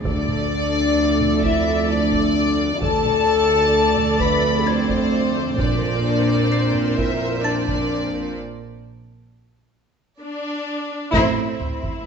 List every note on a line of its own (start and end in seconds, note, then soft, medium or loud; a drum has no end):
0.05 2.78 D2 medium
0.05 2.79 F2 medium
0.05 2.79 A3 medium
0.05 1.39 D4 loud
0.05 2.78 A4 medium
0.05 2.78 D5 medium
0.05 1.40 D5 medium
0.05 taiko medium
0.28 taiko mid soft
1.20 taiko mid soft
1.43 1.90 E4 loud
1.43 1.89 E5 medium
1.43 1.90 E5 medium
1.43 taiko medium
1.89 2.82 D4 loud
1.89 2.82 D5 medium
2.12 taiko medium
2.81 5.55 D2 medium
2.81 8.32 F2 medium
2.81 5.55 A3 medium
2.81 4.20 A4 loud
2.81 5.55 A4 medium
2.81 5.55 D5 medium
2.81 4.18 A5 loud
2.81 4.18 A5 medium
2.81 taiko medium
3.04 taiko mid soft
3.97 taiko mid soft
4.20 4.65 B4 loud
4.20 4.67 B5 medium
4.20 4.68 B5 medium
4.20 taiko medium
4.67 5.59 C4 loud
4.67 5.59 C5 medium
4.67 5.60 C5 loud
4.67 7.40 G#6 medium
4.89 taiko medium
5.58 8.32 A#1 medium
5.58 8.32 A#2 medium
5.58 8.32 C4 medium
5.58 6.98 D4 medium
5.58 8.32 A#4 medium
5.58 8.32 C5 medium
5.58 6.94 D5 medium
5.58 6.98 D5 medium
5.58 taiko medium
5.82 taiko mid soft
6.52 8.32 C7 soft
6.75 taiko mid soft
6.97 7.43 E4 medium
6.97 7.43 E5 medium
6.97 7.44 E5 medium
6.97 taiko medium
7.43 8.36 D4 medium
7.43 8.36 D5 medium
7.43 8.32 A5 soft
7.43 8.32 A6 medium
7.67 taiko medium
10.21 11.09 D4 medium
10.21 11.09 D5 medium
11.12 11.56 A1 medium
11.12 11.56 A2 medium
11.12 11.56 A3 medium
11.12 11.56 C4 medium
11.12 12.01 C4 medium
11.12 12.06 E4 medium
11.12 11.56 A4 medium
11.12 11.56 C5 medium
11.12 12.06 E5 medium
11.12 taiko medium
11.59 11.67 A1 medium
11.59 11.67 C5 soft
11.59 taiko low medium
11.83 taiko medium